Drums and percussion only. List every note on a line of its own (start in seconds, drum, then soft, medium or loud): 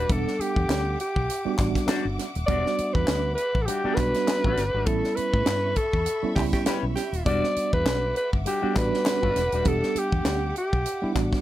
0.10 kick loud
0.10 closed hi-hat medium
0.28 snare soft
0.41 closed hi-hat medium
0.56 kick medium
0.70 snare loud
0.70 clap medium
0.70 closed hi-hat loud
1.00 closed hi-hat medium
1.16 kick medium
1.30 closed hi-hat loud
1.58 kick medium
1.58 snare soft
1.58 clap medium
1.58 closed hi-hat medium
1.75 kick medium
1.75 snare soft
1.75 closed hi-hat medium
1.88 snare loud
1.88 clap medium
1.88 closed hi-hat loud
2.19 snare soft
2.19 closed hi-hat medium
2.35 closed hi-hat medium
2.48 kick loud
2.48 closed hi-hat medium
2.66 snare soft
2.79 closed hi-hat medium
2.95 kick medium
3.08 snare loud
3.08 clap loud
3.08 closed hi-hat loud
3.38 closed hi-hat medium
3.55 kick medium
3.68 closed hi-hat loud
3.97 kick loud
3.97 snare soft
3.97 clap medium
3.97 closed hi-hat medium
4.14 snare soft
4.14 closed hi-hat medium
4.27 snare loud
4.27 clap loud
4.27 closed hi-hat loud
4.44 kick medium
4.57 snare soft
4.57 closed hi-hat medium
4.86 kick loud
4.86 closed hi-hat medium
5.04 snare soft
5.17 closed hi-hat medium
5.34 kick loud
5.46 snare loud
5.46 clap loud
5.46 closed hi-hat medium
5.76 kick medium
5.76 closed hi-hat medium
5.93 kick medium
6.06 closed hi-hat loud
6.36 kick loud
6.36 snare soft
6.36 clap medium
6.36 open hi-hat medium
6.53 kick medium
6.53 snare soft
6.53 closed hi-hat soft
6.66 snare loud
6.66 clap loud
6.66 closed hi-hat loud
6.96 snare soft
6.96 closed hi-hat medium
7.13 closed hi-hat medium
7.26 kick loud
7.26 closed hi-hat medium
7.44 snare soft
7.56 closed hi-hat medium
7.73 kick medium
7.86 snare loud
7.86 clap loud
7.86 closed hi-hat medium
8.16 closed hi-hat medium
8.33 kick medium
8.46 closed hi-hat loud
8.76 kick medium
8.76 snare soft
8.76 clap medium
8.76 closed hi-hat medium
8.94 snare soft
9.06 snare loud
9.06 clap loud
9.06 closed hi-hat loud
9.23 kick medium
9.36 snare soft
9.36 closed hi-hat medium
9.52 closed hi-hat medium
9.65 kick loud
9.65 closed hi-hat medium
9.83 snare soft
9.96 closed hi-hat medium
10.12 kick medium
10.25 snare loud
10.25 clap loud
10.25 closed hi-hat loud
10.56 closed hi-hat medium
10.73 kick medium
10.86 closed hi-hat loud
11.15 kick medium
11.15 snare soft
11.15 clap medium
11.15 closed hi-hat medium
11.33 kick medium
11.33 snare soft